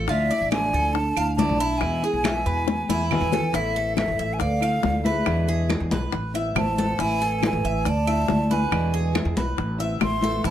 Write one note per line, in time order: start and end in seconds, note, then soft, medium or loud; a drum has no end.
0.08 0.29 D2 medium
0.08 0.29 D3 medium
0.08 0.30 F3 medium
0.08 0.49 A3 medium
0.08 0.30 A3 medium
0.08 0.30 D4 medium
0.08 0.29 E4 medium
0.08 0.30 F4 medium
0.08 0.49 E5 loud
0.08 high bongo medium
0.08 high conga soft
0.30 0.52 A3 soft
0.30 0.52 D4 soft
0.30 0.51 E4 medium
0.30 0.72 D5 medium
0.30 high bongo soft
0.30 high conga soft
0.41 0.72 A1 medium
0.51 0.94 D3 medium
0.51 0.94 F3 medium
0.51 0.95 A3 medium
0.51 0.92 D4 medium
0.51 0.95 D4 medium
0.51 0.95 E4 medium
0.51 0.95 G#5 loud
0.51 high bongo medium
0.51 high conga loud
0.51 claves medium
0.73 1.14 D2 medium
0.73 1.16 A4 medium
0.73 high conga soft
0.93 1.35 D4 medium
0.93 1.35 A5 loud
0.93 muted nylon-string guitar stroke medium
0.93 high bongo medium
0.93 high conga soft
1.16 1.48 D2 medium
1.16 1.37 A3 soft
1.16 1.38 D4 soft
1.16 1.37 E4 medium
1.16 1.38 F5 medium
1.16 high bongo soft
1.16 high conga soft
1.16 claves medium
1.36 1.58 D3 medium
1.36 1.59 F3 medium
1.36 1.59 A3 medium
1.36 1.77 D4 medium
1.36 1.59 D4 medium
1.36 1.59 E4 medium
1.36 1.59 D5 medium
1.36 1.79 A5 loud
1.36 high bongo soft
1.36 low bongo medium
1.36 high conga medium
1.49 1.80 B1 loud
1.60 1.81 A3 soft
1.60 1.81 D4 soft
1.60 1.81 E4 medium
1.60 2.02 E4 loud
1.60 high bongo soft
1.60 high conga soft
1.78 2.02 E2 medium
1.78 2.02 B2 medium
1.78 2.02 E3 medium
1.78 3.10 B3 medium
1.78 3.09 G#5 medium
1.78 high bongo medium
1.78 claves medium
1.82 2.02 G#3 medium
1.82 2.03 B3 medium
1.82 2.01 E4 medium
1.82 high conga soft
2.03 2.24 G#3 soft
2.03 2.24 B3 soft
2.03 2.23 E4 medium
2.03 2.24 G#4 medium
2.03 high bongo soft
2.03 high conga soft
2.14 2.44 B1 medium
2.23 2.66 B2 medium
2.23 2.66 E3 medium
2.23 2.67 G#3 medium
2.23 2.67 B3 medium
2.23 2.67 E4 medium
2.23 2.46 E5 medium
2.23 high bongo medium
2.23 high conga loud
2.23 claves medium
2.46 2.87 E2 medium
2.46 2.88 B4 medium
2.68 muted nylon-string guitar stroke medium
2.68 high bongo medium
2.68 high conga medium
2.89 3.20 E2 medium
2.89 3.10 G#3 soft
2.89 3.11 B3 soft
2.89 3.10 E4 medium
2.89 3.31 E4 medium
2.89 high bongo medium
2.89 high conga loud
3.10 3.31 B2 medium
3.10 3.31 E3 medium
3.10 3.32 G#3 medium
3.10 3.31 B3 medium
3.10 3.30 E4 medium
3.10 3.51 B4 medium
3.10 3.57 G#5 loud
3.10 low bongo medium
3.10 low conga medium
3.10 claves medium
3.21 3.52 E2 loud
3.31 3.53 G#3 soft
3.31 3.53 B3 soft
3.31 3.52 E4 medium
3.31 3.54 A4 medium
3.31 low bongo medium
3.31 low conga medium
3.53 4.05 A1 medium
3.53 3.95 E3 medium
3.53 3.96 B3 medium
3.53 3.95 C4 medium
3.53 3.75 E4 medium
3.53 3.96 E4 medium
3.53 3.98 A4 medium
3.53 3.97 E5 loud
3.53 high bongo medium
3.53 high conga soft
3.76 4.18 A4 medium
3.76 high conga soft
3.96 4.39 E3 medium
3.96 4.39 B3 medium
3.96 4.39 C4 medium
3.96 4.39 E4 medium
3.96 4.32 A4 medium
3.96 4.35 E5 medium
3.96 high bongo medium
3.96 high conga loud
3.96 claves medium
4.08 4.18 A1 medium
4.19 4.40 A1 medium
4.19 4.40 E5 medium
4.19 high conga soft
4.33 4.41 B4 medium
4.33 4.41 G#5 medium
4.39 4.81 D2 loud
4.39 5.06 A4 medium
4.39 4.61 D5 medium
4.39 5.06 F5 loud
4.39 muted nylon-string guitar stroke medium
4.39 high bongo medium
4.39 high conga soft
4.61 4.81 F3 medium
4.61 4.82 A3 medium
4.61 4.82 D4 medium
4.61 4.82 E4 medium
4.61 5.04 F5 medium
4.61 high conga soft
4.61 claves medium
4.82 5.25 D2 medium
4.82 5.04 F3 medium
4.82 5.04 A3 medium
4.82 5.04 D4 soft
4.82 5.03 E4 medium
4.82 high bongo medium
4.82 low bongo medium
4.82 high conga medium
5.04 5.25 F3 medium
5.04 5.25 A3 medium
5.04 5.26 D4 medium
5.04 5.25 E4 medium
5.04 5.70 G#4 medium
5.04 5.47 B4 medium
5.04 5.70 E5 medium
5.04 high conga medium
5.25 5.78 E2 loud
5.25 5.68 B2 medium
5.25 5.67 D3 medium
5.25 5.68 G#3 medium
5.25 5.69 B3 medium
5.25 5.69 E4 medium
5.25 high bongo medium
5.25 claves medium
5.48 5.90 G#4 medium
5.48 high bongo soft
5.48 high conga soft
5.69 6.11 D3 medium
5.69 6.12 G#3 medium
5.69 6.12 B3 medium
5.69 6.12 E4 medium
5.69 high bongo medium
5.69 high conga loud
5.69 claves medium
5.80 5.91 E2 loud
5.91 6.12 B1 medium
5.91 6.33 B4 medium
5.91 high bongo soft
5.91 high conga loud
6.12 6.54 A1 loud
6.12 muted nylon-string guitar stroke medium
6.12 high bongo medium
6.12 high conga soft
6.34 6.56 B3 medium
6.34 6.56 C4 medium
6.34 6.55 E4 medium
6.34 6.77 E5 medium
6.34 high bongo soft
6.34 high conga soft
6.55 6.97 A1 medium
6.55 6.76 E3 medium
6.55 6.77 B3 medium
6.55 6.77 C4 soft
6.55 6.76 E4 medium
6.55 6.97 C5 medium
6.55 7.01 A5 loud
6.55 high bongo medium
6.55 low bongo medium
6.55 high conga medium
6.55 claves medium
6.78 6.99 B3 medium
6.78 6.98 C4 medium
6.78 6.98 E4 medium
6.78 6.99 A4 medium
6.78 high conga medium
6.99 7.50 A1 loud
6.99 7.41 E3 medium
6.99 7.42 B3 medium
6.99 7.42 C4 medium
6.99 7.20 E4 medium
6.99 7.42 E4 medium
6.99 7.44 B4 medium
6.99 7.43 G#5 loud
6.99 high bongo medium
6.99 high conga soft
7.22 7.63 A4 medium
7.22 high conga soft
7.42 7.85 E3 medium
7.42 7.85 B3 medium
7.42 7.85 C4 medium
7.42 7.85 E4 medium
7.42 7.84 B4 medium
7.42 7.91 G#5 loud
7.42 high bongo medium
7.42 high conga loud
7.42 claves medium
7.53 7.63 A1 loud
7.65 7.85 A1 medium
7.65 7.85 E5 medium
7.65 high conga soft
7.85 8.27 D2 loud
7.85 8.07 D5 medium
7.85 8.51 D5 medium
7.85 8.55 A5 loud
7.85 muted nylon-string guitar stroke medium
7.85 high bongo medium
7.85 high conga soft
8.07 8.27 F3 medium
8.07 8.28 A3 medium
8.07 8.28 D4 medium
8.07 8.28 E4 medium
8.07 8.49 E5 medium
8.07 high conga soft
8.07 claves medium
8.28 8.70 D2 medium
8.28 8.49 F3 soft
8.28 8.50 A3 medium
8.28 8.50 D4 medium
8.28 8.48 E4 medium
8.28 high bongo medium
8.28 low bongo medium
8.28 high conga medium
8.50 8.72 F3 medium
8.50 8.71 A3 medium
8.50 8.71 D4 medium
8.50 8.71 E4 medium
8.50 8.92 B4 medium
8.50 9.16 B4 medium
8.50 9.16 G#5 medium
8.50 high conga medium
8.71 9.23 E2 loud
8.71 9.14 B2 medium
8.71 9.13 D3 medium
8.71 9.14 G#3 medium
8.71 9.15 B3 medium
8.71 9.15 E4 medium
8.71 high bongo medium
8.71 high conga soft
8.71 claves medium
8.94 9.35 G#4 medium
8.94 high bongo soft
8.94 high conga soft
9.14 9.56 D3 soft
9.14 9.57 G#3 medium
9.14 9.56 B3 medium
9.14 9.57 E4 medium
9.14 high bongo medium
9.14 high conga loud
9.14 claves medium
9.25 9.36 E2 loud
9.37 9.57 B1 medium
9.37 9.79 B4 medium
9.37 high bongo soft
9.37 high conga medium
9.57 9.99 A1 loud
9.57 muted nylon-string guitar stroke medium
9.57 high bongo medium
9.57 high conga soft
9.78 10.00 B3 medium
9.78 9.99 C4 medium
9.78 10.00 E4 medium
9.78 10.22 E5 medium
9.78 high bongo soft
9.78 high conga soft
9.99 10.42 A1 medium
9.99 10.21 E3 soft
9.99 10.21 B3 medium
9.99 10.21 C4 soft
9.99 10.20 E4 soft
9.99 10.42 E5 medium
9.99 10.42 C6 loud
9.99 high bongo medium
9.99 low bongo medium
9.99 high conga medium
9.99 claves medium
10.21 10.43 B3 medium
10.21 10.42 C4 medium
10.21 10.43 E4 medium
10.21 10.44 A4 medium
10.21 high conga medium
10.43 10.50 A1 loud
10.43 10.50 E3 medium
10.43 10.50 C4 medium
10.43 10.50 E4 medium
10.43 10.50 C5 medium
10.43 high bongo medium
10.47 10.50 A5 loud